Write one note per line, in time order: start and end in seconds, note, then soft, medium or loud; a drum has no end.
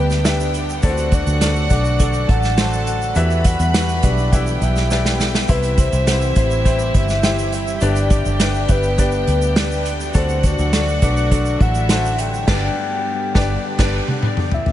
0.00 0.79 D2 medium
0.00 0.85 G2 medium
0.00 3.12 D3 medium
0.00 0.79 G3 medium
0.00 0.81 B3 medium
0.00 0.24 D4 medium
0.00 0.25 G4 medium
0.00 0.79 G4 medium
0.00 0.25 B4 medium
0.00 0.50 B4 medium
0.00 0.84 D5 loud
0.00 0.13 E5 medium
0.00 0.79 G5 medium
0.10 snare soft
0.10 shaker soft
0.24 0.71 D4 medium
0.24 0.71 G4 medium
0.24 0.71 B4 medium
0.24 0.71 E5 medium
0.24 snare loud
0.24 closed hi-hat medium
0.24 shaker medium
0.40 shaker medium
0.54 closed hi-hat medium
0.54 shaker medium
0.69 shaker medium
0.82 1.24 D2 loud
0.82 1.67 D3 medium
0.82 3.14 F#3 medium
0.82 3.14 A3 medium
0.82 1.29 D4 medium
0.82 0.90 E4 medium
0.82 2.26 F#4 medium
0.82 5.45 A4 medium
0.82 1.29 A4 medium
0.82 1.15 C5 medium
0.82 1.30 D5 loud
0.82 2.26 F#5 loud
0.82 kick loud
0.82 closed hi-hat medium
0.82 shaker medium
0.90 1.32 F#4 medium
0.97 closed hi-hat soft
0.97 shaker medium
1.12 1.71 D5 loud
1.12 kick medium
1.12 closed hi-hat medium
1.12 shaker medium
1.26 1.67 D2 medium
1.26 closed hi-hat soft
1.26 shaker medium
1.41 1.64 D4 medium
1.41 1.64 F#4 medium
1.41 1.65 A4 medium
1.41 1.65 D5 medium
1.41 snare loud
1.41 closed hi-hat loud
1.41 shaker medium
1.56 shaker soft
1.70 2.25 B1 medium
1.70 1.93 D4 medium
1.70 1.93 F#4 medium
1.70 1.94 A4 medium
1.70 1.94 D5 medium
1.70 2.31 D5 loud
1.70 kick medium
1.70 closed hi-hat medium
1.70 shaker medium
1.85 shaker soft
1.99 2.45 D4 medium
1.99 2.45 F#4 medium
1.99 2.46 A4 medium
1.99 2.46 D5 medium
1.99 kick medium
1.99 closed hi-hat medium
1.99 shaker medium
2.13 shaker medium
2.29 3.12 A1 medium
2.29 3.14 A4 medium
2.29 2.87 F#5 loud
2.29 3.14 A5 medium
2.29 kick medium
2.29 closed hi-hat medium
2.43 snare soft
2.43 shaker soft
2.57 3.03 D4 medium
2.57 3.04 F#4 medium
2.57 3.04 A4 medium
2.57 3.04 C5 medium
2.57 snare loud
2.57 closed hi-hat medium
2.57 shaker medium
2.73 shaker medium
2.87 3.18 F#5 loud
2.87 closed hi-hat medium
2.87 shaker soft
3.02 shaker soft
3.15 3.56 E2 loud
3.15 5.46 E3 medium
3.15 3.99 E3 medium
3.15 10.10 G3 medium
3.15 5.46 B3 medium
3.15 3.62 F#4 medium
3.15 3.62 G4 medium
3.15 3.62 B4 medium
3.15 4.30 B4 medium
3.15 3.62 E5 loud
3.15 3.47 E5 loud
3.15 4.30 B5 loud
3.15 closed hi-hat medium
3.15 shaker medium
3.30 shaker soft
3.44 4.05 F#5 loud
3.44 kick loud
3.44 closed hi-hat medium
3.44 shaker medium
3.59 4.00 E2 medium
3.59 closed hi-hat soft
3.59 shaker medium
3.74 3.97 F#4 medium
3.74 3.97 G4 medium
3.74 3.98 B4 medium
3.74 3.98 F#5 medium
3.74 snare loud
3.74 closed hi-hat loud
3.74 shaker medium
3.89 shaker soft
4.03 4.58 B1 medium
4.03 4.26 F#4 medium
4.03 4.26 G4 medium
4.03 4.27 B4 medium
4.03 4.64 D5 loud
4.03 4.27 F#5 medium
4.03 kick medium
4.03 closed hi-hat medium
4.03 shaker medium
4.18 shaker soft
4.32 4.78 E4 medium
4.32 4.78 G4 medium
4.32 5.47 G4 medium
4.32 4.79 B4 medium
4.32 4.79 E5 medium
4.32 5.46 G5 medium
4.32 kick medium
4.32 closed hi-hat medium
4.32 shaker medium
4.46 shaker medium
4.61 5.45 B1 medium
4.61 5.20 E5 medium
4.61 closed hi-hat medium
4.61 shaker medium
4.76 snare soft
4.76 shaker soft
4.90 5.36 E4 medium
4.90 5.37 G4 medium
4.90 5.37 B4 medium
4.90 5.37 D5 medium
4.90 snare medium
4.90 shaker medium
5.05 snare medium
5.05 shaker medium
5.20 snare medium
5.20 shaker medium
5.34 snare medium
5.34 shaker soft
5.48 5.90 C2 loud
5.48 6.32 C3 medium
5.48 7.79 E3 medium
5.48 7.79 C4 medium
5.48 5.95 E4 medium
5.48 7.78 E4 medium
5.48 10.10 G4 medium
5.48 5.95 G4 medium
5.48 5.77 B4 medium
5.48 5.95 C5 medium
5.48 7.78 E5 medium
5.48 5.95 E5 loud
5.48 kick loud
5.48 closed hi-hat medium
5.48 shaker medium
5.63 closed hi-hat medium
5.63 shaker medium
5.78 6.33 C5 loud
5.78 kick medium
5.78 closed hi-hat medium
5.78 shaker medium
5.92 6.33 C2 loud
5.92 closed hi-hat soft
5.92 shaker medium
6.07 6.30 E4 medium
6.07 6.30 G4 medium
6.07 6.30 C5 medium
6.07 6.30 F#5 medium
6.07 snare loud
6.07 closed hi-hat loud
6.07 shaker medium
6.21 shaker soft
6.36 6.90 A1 medium
6.36 6.59 E4 medium
6.36 6.59 G4 medium
6.36 6.59 C5 medium
6.36 6.98 C5 loud
6.36 6.59 E5 medium
6.36 kick medium
6.36 closed hi-hat medium
6.36 shaker medium
6.51 shaker soft
6.65 7.11 E4 medium
6.65 7.11 G4 medium
6.65 7.11 C5 medium
6.65 7.12 G5 medium
6.65 kick medium
6.65 closed hi-hat medium
6.65 shaker medium
6.79 shaker medium
6.94 7.78 G1 medium
6.94 7.53 E5 loud
6.94 kick medium
6.94 closed hi-hat medium
7.09 snare soft
7.09 shaker medium
7.23 7.69 E4 medium
7.23 7.69 G4 medium
7.23 7.69 C5 medium
7.23 7.70 G5 medium
7.23 snare loud
7.23 closed hi-hat medium
7.23 shaker medium
7.38 shaker medium
7.53 7.84 E5 loud
7.53 closed hi-hat medium
7.53 shaker medium
7.67 shaker soft
7.80 8.22 G1 loud
7.80 8.65 G2 medium
7.80 12.44 D3 medium
7.80 10.12 B3 medium
7.80 8.27 D4 loud
7.80 8.28 G4 medium
7.80 10.11 G4 medium
7.80 8.28 B4 medium
7.80 8.28 D5 loud
7.80 8.26 D5 loud
7.80 10.11 G5 loud
7.80 closed hi-hat medium
7.80 shaker medium
7.96 closed hi-hat medium
7.96 shaker soft
8.10 kick medium
8.10 closed hi-hat medium
8.10 shaker medium
8.25 8.66 G1 medium
8.25 8.72 D5 loud
8.25 shaker medium
8.39 8.63 D4 medium
8.39 8.63 G4 medium
8.39 8.63 B4 medium
8.39 8.63 D5 medium
8.39 snare loud
8.39 closed hi-hat loud
8.39 shaker medium
8.54 shaker soft
8.68 9.23 G1 medium
8.68 8.92 D4 medium
8.68 8.92 G4 medium
8.68 8.92 B4 medium
8.68 8.99 B4 loud
8.68 8.92 E5 medium
8.68 kick medium
8.68 closed hi-hat medium
8.68 shaker medium
8.83 shaker soft
8.98 9.44 D4 medium
8.98 9.44 G4 medium
8.98 9.44 B4 medium
8.98 9.83 B4 medium
8.98 9.45 D5 medium
8.98 kick medium
8.98 closed hi-hat medium
8.98 shaker medium
9.12 shaker medium
9.27 10.11 D2 medium
9.27 closed hi-hat medium
9.42 shaker medium
9.56 10.02 D4 medium
9.56 10.02 G4 medium
9.56 10.03 B4 medium
9.56 10.03 D5 medium
9.56 snare loud
9.56 closed hi-hat medium
9.56 shaker medium
9.72 shaker medium
9.85 closed hi-hat medium
9.85 shaker medium
10.00 shaker medium
10.14 10.55 D2 loud
10.14 10.98 D3 medium
10.14 12.46 F#3 medium
10.14 12.46 A3 medium
10.14 10.60 D4 loud
10.14 10.61 F#4 medium
10.14 11.58 F#4 medium
10.14 12.46 F#4 medium
10.14 10.61 A4 medium
10.14 10.47 C5 medium
10.14 10.61 D5 loud
10.14 11.58 F#5 loud
10.14 kick loud
10.14 closed hi-hat medium
10.14 shaker medium
10.29 closed hi-hat soft
10.29 shaker medium
10.43 11.03 D5 loud
10.43 kick medium
10.43 closed hi-hat medium
10.43 shaker medium
10.59 10.99 D2 medium
10.59 shaker medium
10.72 10.96 D4 medium
10.72 10.96 F#4 medium
10.72 10.96 A4 medium
10.72 10.96 D5 medium
10.72 snare loud
10.72 closed hi-hat loud
10.72 shaker medium
10.88 shaker soft
11.02 11.56 B1 medium
11.02 11.25 D4 medium
11.02 11.25 F#4 medium
11.02 11.25 A4 medium
11.02 11.26 B4 medium
11.02 11.63 D5 loud
11.02 kick medium
11.02 closed hi-hat medium
11.02 shaker medium
11.17 shaker soft
11.31 11.77 D4 medium
11.31 11.77 F#4 medium
11.31 11.77 A4 medium
11.31 11.78 D5 medium
11.31 kick medium
11.31 closed hi-hat medium
11.31 shaker medium
11.45 shaker medium
11.60 12.44 A1 medium
11.60 12.47 E4 medium
11.60 12.47 E5 medium
11.60 11.90 F#5 loud
11.60 kick loud
11.60 closed hi-hat medium
11.75 shaker medium
11.89 12.35 D4 medium
11.89 12.36 F#4 medium
11.89 12.36 A4 medium
11.89 12.36 C5 medium
11.89 12.17 F#5 loud
11.89 snare loud
11.89 closed hi-hat medium
11.89 shaker medium
12.05 shaker medium
12.18 14.19 G5 loud
12.18 closed hi-hat medium
12.18 shaker soft
12.34 shaker soft
12.47 12.68 G1 loud
12.47 12.68 G2 loud
12.47 14.72 D3 medium
12.47 14.72 G3 medium
12.47 14.72 B3 medium
12.47 12.67 D4 loud
12.47 12.68 D4 loud
12.47 12.68 G4 medium
12.47 14.72 G4 medium
12.47 12.68 B4 loud
12.47 12.68 D5 loud
12.47 12.68 D5 medium
12.47 kick loud
12.47 snare loud
12.47 crash medium
13.34 13.55 G1 loud
13.34 13.55 D4 medium
13.34 13.55 G4 medium
13.34 13.55 B4 loud
13.34 13.55 D5 loud
13.34 kick loud
13.34 snare medium
13.78 13.99 G1 loud
13.78 13.98 D4 loud
13.78 13.99 D4 medium
13.78 13.99 G4 loud
13.78 13.99 B4 medium
13.78 13.99 D5 loud
13.78 kick loud
13.78 snare loud
13.78 crash medium
14.08 high tom medium
14.22 mid tom medium
14.37 mid tom medium
14.51 14.72 E5 loud
14.51 floor tom loud
14.66 floor tom medium